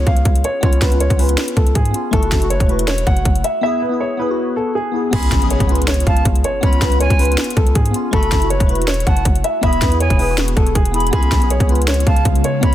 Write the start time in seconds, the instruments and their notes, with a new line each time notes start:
Already playing: synth keys B3 C#4 F4 G#4
0.07 808-style bass C#2, grand piano F5, kick, closed hi-hat
0.17 closed hi-hat
0.25 808-style bass C#2, kick, closed hi-hat
0.35 closed hi-hat
0.44 grand piano C#5, closed hi-hat
0.61 808-style bass C#2, synth keys B3 C#4, grand piano C#5, kick, closed hi-hat
0.65 synth keys F4
0.73 closed hi-hat
0.82 808-style bass C#2, grand piano B4, kick, snare, closed hi-hat
0.90 synth keys B3 C#4, closed hi-hat
0.95 synth keys F4
1.00 grand piano C#5, closed hi-hat
1.10 808-style bass C#2, kick, closed hi-hat
1.17 synth keys B3 C#4, grand piano B4, closed hi-hat, open hi-hat
1.21 synth keys F4
1.27 synth keys B3 C#4, closed hi-hat
1.31 synth keys F4
1.38 snare, closed hi-hat
1.48 closed hi-hat
1.57 808-style bass C#2, grand piano A4, kick, closed hi-hat
1.67 closed hi-hat
1.75 808-style bass G#2, grand piano G#4, kick, closed hi-hat
1.85 closed hi-hat
1.91 synth keys B3 C#4, closed hi-hat
1.95 synth keys F4
2.11 808-style bass F#1, synth keys A3 E4, grand piano A4, kick, closed hi-hat
2.16 synth keys F#4
2.23 closed hi-hat
2.32 808-style bass F#1, kick, snare, closed hi-hat
2.39 synth keys A3 E4, closed hi-hat
2.44 synth keys F#4
2.50 grand piano C#5, closed hi-hat
2.60 808-style bass E1, kick, closed hi-hat
2.66 synth keys A3 E4, grand piano B4, closed hi-hat
2.71 synth keys F#4
2.77 synth keys A3 E4, closed hi-hat
2.81 synth keys F#4
2.88 grand piano C#5, snare, closed hi-hat
2.98 closed hi-hat
3.07 808-style bass F#1, grand piano F#5, kick, closed hi-hat
3.17 closed hi-hat
3.25 808-style bass F#1, kick, closed hi-hat
3.36 closed hi-hat
3.44 grand piano E5, closed hi-hat
3.61 synth keys B3 E4, grand piano E5
3.66 synth keys G#4
3.82 grand piano B4
3.89 synth keys B3 E4
3.94 synth keys G#4
4.00 grand piano C#5
4.17 synth keys B3 E4, grand piano B4
4.22 synth keys G#4
4.26 synth keys B3 E4
4.31 synth keys F#4
4.56 grand piano A4
4.75 grand piano G#4
4.92 synth keys B3 E4
4.96 synth keys G#4
5.11 808-style bass C#2, synth keys B3 C#4, grand piano G#4, flute B5, kick, closed hi-hat, crash, impact
5.15 synth keys F4
5.23 closed hi-hat
5.32 808-style bass B1, kick, snare, closed hi-hat
5.39 synth keys B3 C#4, closed hi-hat
5.44 synth keys G#4
5.50 grand piano C#5, closed hi-hat
5.60 808-style bass C#2, kick, closed hi-hat
5.67 synth keys B3 C#4, grand piano B4, closed hi-hat
5.72 synth keys F4, closed hi-hat
5.77 synth keys B3 C#4
5.81 synth keys F4, closed hi-hat
5.88 grand piano C#5, snare, closed hi-hat
5.94 closed hi-hat
6.00 closed hi-hat
6.07 808-style bass C#2, grand piano F5, flute A5, kick, closed hi-hat
6.17 closed hi-hat
6.25 808-style bass C#2, kick, closed hi-hat
6.36 closed hi-hat
6.44 grand piano C#5, closed hi-hat
6.61 808-style bass C#2, synth keys B3 C#4, grand piano C#5, flute B5, kick, closed hi-hat
6.65 synth keys F4
6.73 closed hi-hat
6.82 808-style bass C#2, grand piano B4, kick, snare, closed hi-hat
6.90 synth keys B3 C#4, closed hi-hat
6.95 synth keys F4
7.00 grand piano C#5, flute G#5, closed hi-hat
7.10 808-style bass C#2, kick, closed hi-hat
7.17 synth keys B3 C#4, grand piano B4, closed hi-hat, open hi-hat
7.21 synth keys F4
7.25 synth keys B3 C#4, closed hi-hat
7.31 synth keys F4, closed hi-hat
7.38 snare, closed hi-hat
7.44 closed hi-hat
7.50 closed hi-hat
7.57 808-style bass C#2, grand piano A4, kick, closed hi-hat
7.67 closed hi-hat
7.75 808-style bass G#2, grand piano G#4, kick, closed hi-hat
7.86 closed hi-hat
7.91 synth keys B3 C#4, closed hi-hat
7.95 synth keys F4
8.11 808-style bass F#1, synth keys A3 E4, grand piano A4, flute B5, kick, closed hi-hat
8.16 synth keys F#4
8.23 closed hi-hat
8.32 808-style bass F#1, kick, snare, closed hi-hat
8.39 synth keys A3 E4, closed hi-hat
8.44 synth keys F#4
8.50 grand piano C#5, closed hi-hat
8.60 808-style bass E1, kick, closed hi-hat
8.67 synth keys A3 E4, grand piano B4, closed hi-hat
8.71 synth keys F#4
8.75 synth keys A3 E4, closed hi-hat
8.81 synth keys F#4, closed hi-hat
8.88 grand piano C#5, snare, closed hi-hat
8.94 closed hi-hat
9.00 closed hi-hat
9.07 808-style bass F#1, grand piano F#5, flute A5, kick, closed hi-hat
9.17 closed hi-hat
9.25 808-style bass F#1, kick, closed hi-hat
9.35 closed hi-hat
9.44 grand piano E5, closed hi-hat
9.61 808-style bass E1, synth keys B3 E4, grand piano E5, flute B5, kick, closed hi-hat
9.66 synth keys G#4
9.73 closed hi-hat
9.82 808-style bass E2, grand piano B4, kick, snare, closed hi-hat
9.89 synth keys B3 E4, closed hi-hat
9.94 synth keys G#4
10.00 grand piano C#5, flute G#5, closed hi-hat
10.10 808-style bass E1, kick, closed hi-hat
10.17 synth keys B3 E4, grand piano B4, open hi-hat
10.22 synth keys G#4
10.26 synth keys B3 E4
10.31 synth keys F#4
10.38 snare, closed hi-hat
10.48 closed hi-hat
10.56 808-style bass E1, grand piano A4, kick, closed hi-hat
10.67 closed hi-hat
10.75 808-style bass E1, grand piano G#4, kick, closed hi-hat
10.85 closed hi-hat
10.91 synth keys B3 E4, flute B5, closed hi-hat
10.96 synth keys G#4
11.00 closed hi-hat
11.07 closed hi-hat
11.11 808-style bass C#2, ambient pad C#3 G#3 B3 F4, synth keys B3 C#4, grand piano G#4, flute B5, kick, closed hi-hat
11.15 synth keys F4
11.23 closed hi-hat
11.32 808-style bass B1, kick, snare, closed hi-hat
11.39 synth keys B3 C#4, closed hi-hat
11.44 synth keys G#4
11.50 grand piano C#5, closed hi-hat
11.60 808-style bass C#2, kick, closed hi-hat
11.67 synth keys B3 C#4, grand piano B4, closed hi-hat
11.72 synth keys F4, closed hi-hat
11.77 synth keys B3 C#4
11.81 synth keys F4, closed hi-hat
11.88 grand piano C#5, snare, closed hi-hat
11.94 closed hi-hat
12.00 closed hi-hat
12.07 808-style bass C#2, grand piano F5, flute A5, kick, closed hi-hat
12.16 closed hi-hat
12.25 808-style bass C#2, kick, closed hi-hat
12.35 closed hi-hat
12.44 grand piano C#5, closed hi-hat
12.61 808-style bass C#2, synth keys B3 C#4, grand piano C#5, flute B5, kick, closed hi-hat
12.65 synth keys F4